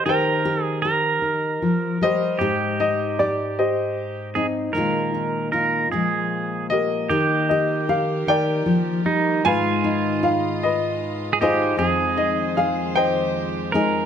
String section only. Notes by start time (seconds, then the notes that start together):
7.08 D#3 A#3 G4 A#4
9.45 G#3 F4 D#5
11.80 D#3 C5